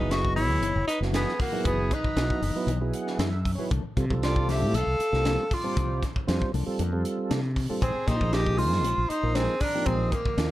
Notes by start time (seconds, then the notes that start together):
Already playing: D#4 B4
0.00 F#1 F#3 B3 E4 G#4
0.10 F#4 D#5, muted clean electric guitar stroke, snare, closed hi-hat
0.25 kick
0.36 E3 B3 D#4 E4 G#4 C#5, open hi-hat
0.49 D#2, muted clean electric guitar stroke
0.62 F#1 E3 B3 D#4 G#4, closed hi-hat
0.75 F#1, muted clean electric guitar stroke
0.87 D#4 B4, muted clean electric guitar stroke, closed hi-hat
1.01 F#1 F#3 B3 E4 F#4, muted clean electric guitar stroke, snare
1.12 E3 B3 D#4 G#4, snare, closed hi-hat
1.26 muted clean electric guitar stroke, snare
1.40 A#3 F#4, kick, open hi-hat
1.52 F#3 B3 D#4 E4 G#4
1.64 F#1 E3 B3 D#4 G#4, kick, closed hi-hat
1.78 muted clean electric guitar stroke
1.90 D#4 B4, muted clean electric guitar stroke, kick, closed hi-hat
2.04 kick
2.16 B1 F#3 B3 E4 F#4, muted clean electric guitar stroke, snare, closed hi-hat
2.30 kick
2.41 F#1 E3 B3 D#4 G#4, open hi-hat
2.55 F#3 B3 E4 B4, muted clean electric guitar stroke
2.67 B1 E3 B3 D#4 G#4, closed hi-hat
2.81 F#3 B3 E4 G#4, muted clean electric guitar stroke
2.93 F#5, muted clean electric guitar stroke, closed hi-hat
3.07 muted clean electric guitar stroke, snare
3.19 F#2 E3 B3 D#4 G#4 E5, snare, closed hi-hat
3.33 muted clean electric guitar stroke
3.45 kick, open hi-hat
3.55 F#3 B3 D#4 G#4 B4 C#5, muted fretless electric bass stroke
3.59 B3 E4
3.71 C2 F3 A#3 D4 A4, kick, closed hi-hat
3.84 muted fretless electric bass stroke, muted clean electric guitar stroke
3.97 C3 G3 C4 F4 A4, muted clean electric guitar stroke, kick, closed hi-hat
4.10 C2 G3 C4 F4 A4, kick
4.23 F4 D5, muted clean electric guitar stroke, snare, closed hi-hat
4.36 kick
4.48 F3 A#3 D4 G4 A4 E5, snare, open hi-hat
4.62 A2, muted clean electric guitar stroke
4.73 C2 F3 A#3 D4 A4 F5, closed hi-hat
4.87 C2, muted clean electric guitar stroke
5.00 muted clean electric guitar stroke, closed hi-hat
5.12 C2 G3 A#3 C4 F4, muted clean electric guitar stroke, snare
5.25 F3 A#3 D4 A4, snare, closed hi-hat
5.39 muted clean electric guitar stroke
5.51 F4 D5, kick, open hi-hat
5.63 G3 A#3 C4 D4 F4 A4 C5
5.76 C2 F3 A#3 D4 A4, kick, closed hi-hat
5.90 muted clean electric guitar stroke
6.03 muted clean electric guitar stroke, kick, snare, closed hi-hat
6.16 kick
6.27 F2 G3 C4 F4 C5, muted clean electric guitar stroke, snare, closed hi-hat
6.42 kick
6.54 C2 F3 A#3 D4 A4, open hi-hat
6.66 G3 C4 F4 A4, muted fretless electric bass stroke
6.79 F2 F3 A#3 D4 A4, closed hi-hat
6.92 G3 C4 F4 A4
7.04 muted clean electric guitar stroke, closed hi-hat
7.17 muted clean electric guitar stroke
7.30 C3 F3 A#3 D4 A4, snare, closed hi-hat
7.44 muted clean electric guitar stroke
7.56 kick, open hi-hat
7.69 G3 A#3 C4 D4 F4 A4, muted fretless electric bass stroke
7.81 A#1 G#3 C4 D#4 G4 G#4, kick, closed hi-hat
7.95 muted fretless electric bass stroke, muted clean electric guitar stroke
8.07 A#2 F3 A#3 D#4 G4 C5, muted clean electric guitar stroke, kick, snare, closed hi-hat
8.21 A#1 F3 A#3 D#4 G#4, kick
8.32 G4 D#5, muted clean electric guitar stroke, snare, closed hi-hat
8.46 kick
8.58 G#3 C4 D#4 F4 G4 C5, open hi-hat
8.72 G2, snare
8.83 A#1 G#3 C4 D#4 G4, closed hi-hat
8.98 A#1, muted clean electric guitar stroke
9.09 D#4 C5, muted clean electric guitar stroke, closed hi-hat
9.23 A#1 F3 A#3 D#4 A#4, muted clean electric guitar stroke
9.35 G#3 C4 D#4 G4 G#4, snare, closed hi-hat
9.49 muted clean electric guitar stroke
9.61 D4 A#4, kick, open hi-hat
9.74 F3 A#3 C4 D#4 G4
9.86 A#1 G#3 C4 D#4 G4 G#4, kick, closed hi-hat
10.00 muted clean electric guitar stroke
10.12 A#3 G4, muted clean electric guitar stroke, kick, closed hi-hat
10.26 kick
10.37 D#2 F3 A#3 D#4 F4, muted clean electric guitar stroke, snare, closed hi-hat